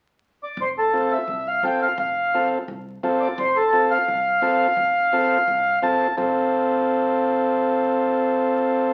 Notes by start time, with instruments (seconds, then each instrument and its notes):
0.43 accordion D5
0.57 upright bass F1
0.61 accordion C5
0.78 accordion A4
0.93 transistor combo organ C4 F4 A4
1.12 accordion E5
1.28 upright bass C2
1.48 accordion F5
1.63 upright bass F1, transistor combo organ C4 F4 A4, accordion G5
1.82 accordion F5
1.98 upright bass F1, accordion F5
2.34 transistor combo organ C4 F4 A4
2.68 upright bass C2
3.03 upright bass F1, transistor combo organ C4 F4 A4
3.21 accordion D5
3.38 upright bass F1, accordion C5
3.56 accordion A4
3.73 transistor combo organ C4 F4 A4
3.91 accordion F5
4.08 upright bass C2
4.42 upright bass F1, transistor combo organ C4 F4 A4
4.77 upright bass F1
5.13 transistor combo organ C4 F4 A4
5.48 upright bass C2
5.82 upright bass F1, transistor combo organ C4 F4 A4 A5
6.17 upright bass F1, transistor combo organ C4 F4 A4